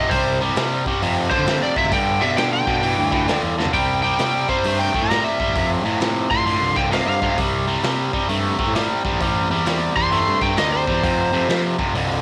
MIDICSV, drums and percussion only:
0, 0, Header, 1, 2, 480
1, 0, Start_track
1, 0, Key_signature, 0, "major"
1, 0, Tempo, 454890
1, 120, Time_signature, 4, 2, 24, 8
1, 12891, End_track
2, 0, Start_track
2, 0, Title_t, "Drums"
2, 117, Note_on_c, 9, 46, 55
2, 119, Note_on_c, 9, 36, 109
2, 223, Note_off_c, 9, 46, 0
2, 225, Note_off_c, 9, 36, 0
2, 591, Note_on_c, 9, 46, 52
2, 605, Note_on_c, 9, 38, 111
2, 697, Note_off_c, 9, 46, 0
2, 711, Note_off_c, 9, 38, 0
2, 908, Note_on_c, 9, 36, 87
2, 1014, Note_off_c, 9, 36, 0
2, 1077, Note_on_c, 9, 46, 56
2, 1182, Note_off_c, 9, 46, 0
2, 1386, Note_on_c, 9, 36, 86
2, 1491, Note_off_c, 9, 36, 0
2, 1546, Note_on_c, 9, 46, 54
2, 1560, Note_on_c, 9, 38, 96
2, 1651, Note_off_c, 9, 46, 0
2, 1665, Note_off_c, 9, 38, 0
2, 1861, Note_on_c, 9, 36, 86
2, 1967, Note_off_c, 9, 36, 0
2, 2019, Note_on_c, 9, 46, 58
2, 2025, Note_on_c, 9, 36, 115
2, 2124, Note_off_c, 9, 46, 0
2, 2130, Note_off_c, 9, 36, 0
2, 2502, Note_on_c, 9, 46, 53
2, 2515, Note_on_c, 9, 38, 104
2, 2607, Note_off_c, 9, 46, 0
2, 2621, Note_off_c, 9, 38, 0
2, 2819, Note_on_c, 9, 36, 86
2, 2924, Note_off_c, 9, 36, 0
2, 2982, Note_on_c, 9, 46, 52
2, 3087, Note_off_c, 9, 46, 0
2, 3295, Note_on_c, 9, 36, 90
2, 3401, Note_off_c, 9, 36, 0
2, 3461, Note_on_c, 9, 46, 50
2, 3475, Note_on_c, 9, 38, 96
2, 3567, Note_off_c, 9, 46, 0
2, 3581, Note_off_c, 9, 38, 0
2, 3793, Note_on_c, 9, 38, 62
2, 3854, Note_on_c, 9, 43, 86
2, 3899, Note_off_c, 9, 38, 0
2, 3939, Note_on_c, 9, 46, 58
2, 3942, Note_on_c, 9, 36, 102
2, 3960, Note_off_c, 9, 43, 0
2, 4045, Note_off_c, 9, 46, 0
2, 4048, Note_off_c, 9, 36, 0
2, 4418, Note_on_c, 9, 46, 55
2, 4432, Note_on_c, 9, 38, 97
2, 4524, Note_off_c, 9, 46, 0
2, 4537, Note_off_c, 9, 38, 0
2, 4736, Note_on_c, 9, 36, 80
2, 4841, Note_off_c, 9, 36, 0
2, 4895, Note_on_c, 9, 46, 58
2, 5000, Note_off_c, 9, 46, 0
2, 5216, Note_on_c, 9, 36, 81
2, 5322, Note_off_c, 9, 36, 0
2, 5384, Note_on_c, 9, 46, 55
2, 5398, Note_on_c, 9, 38, 94
2, 5489, Note_off_c, 9, 46, 0
2, 5503, Note_off_c, 9, 38, 0
2, 5697, Note_on_c, 9, 36, 80
2, 5802, Note_off_c, 9, 36, 0
2, 5861, Note_on_c, 9, 46, 57
2, 5863, Note_on_c, 9, 36, 105
2, 5967, Note_off_c, 9, 46, 0
2, 5969, Note_off_c, 9, 36, 0
2, 6339, Note_on_c, 9, 46, 54
2, 6353, Note_on_c, 9, 38, 101
2, 6445, Note_off_c, 9, 46, 0
2, 6459, Note_off_c, 9, 38, 0
2, 6655, Note_on_c, 9, 36, 81
2, 6761, Note_off_c, 9, 36, 0
2, 6826, Note_on_c, 9, 46, 52
2, 6931, Note_off_c, 9, 46, 0
2, 7137, Note_on_c, 9, 36, 80
2, 7243, Note_off_c, 9, 36, 0
2, 7302, Note_on_c, 9, 46, 50
2, 7316, Note_on_c, 9, 38, 95
2, 7408, Note_off_c, 9, 46, 0
2, 7421, Note_off_c, 9, 38, 0
2, 7618, Note_on_c, 9, 36, 82
2, 7724, Note_off_c, 9, 36, 0
2, 7786, Note_on_c, 9, 36, 113
2, 7786, Note_on_c, 9, 46, 54
2, 7891, Note_off_c, 9, 46, 0
2, 7892, Note_off_c, 9, 36, 0
2, 8265, Note_on_c, 9, 46, 58
2, 8278, Note_on_c, 9, 38, 106
2, 8370, Note_off_c, 9, 46, 0
2, 8384, Note_off_c, 9, 38, 0
2, 8582, Note_on_c, 9, 36, 83
2, 8688, Note_off_c, 9, 36, 0
2, 8747, Note_on_c, 9, 46, 52
2, 8853, Note_off_c, 9, 46, 0
2, 9063, Note_on_c, 9, 36, 87
2, 9169, Note_off_c, 9, 36, 0
2, 9231, Note_on_c, 9, 46, 59
2, 9245, Note_on_c, 9, 38, 95
2, 9337, Note_off_c, 9, 46, 0
2, 9351, Note_off_c, 9, 38, 0
2, 9546, Note_on_c, 9, 36, 84
2, 9652, Note_off_c, 9, 36, 0
2, 9710, Note_on_c, 9, 46, 56
2, 9714, Note_on_c, 9, 36, 103
2, 9816, Note_off_c, 9, 46, 0
2, 9820, Note_off_c, 9, 36, 0
2, 10193, Note_on_c, 9, 46, 54
2, 10207, Note_on_c, 9, 38, 98
2, 10299, Note_off_c, 9, 46, 0
2, 10313, Note_off_c, 9, 38, 0
2, 10511, Note_on_c, 9, 36, 82
2, 10616, Note_off_c, 9, 36, 0
2, 10672, Note_on_c, 9, 46, 50
2, 10777, Note_off_c, 9, 46, 0
2, 10990, Note_on_c, 9, 36, 91
2, 11096, Note_off_c, 9, 36, 0
2, 11152, Note_on_c, 9, 46, 52
2, 11165, Note_on_c, 9, 38, 99
2, 11257, Note_off_c, 9, 46, 0
2, 11271, Note_off_c, 9, 38, 0
2, 11475, Note_on_c, 9, 36, 84
2, 11580, Note_off_c, 9, 36, 0
2, 11644, Note_on_c, 9, 36, 113
2, 11647, Note_on_c, 9, 46, 55
2, 11749, Note_off_c, 9, 36, 0
2, 11752, Note_off_c, 9, 46, 0
2, 12129, Note_on_c, 9, 46, 50
2, 12143, Note_on_c, 9, 38, 106
2, 12235, Note_off_c, 9, 46, 0
2, 12248, Note_off_c, 9, 38, 0
2, 12440, Note_on_c, 9, 36, 88
2, 12546, Note_off_c, 9, 36, 0
2, 12608, Note_on_c, 9, 46, 56
2, 12713, Note_off_c, 9, 46, 0
2, 12891, End_track
0, 0, End_of_file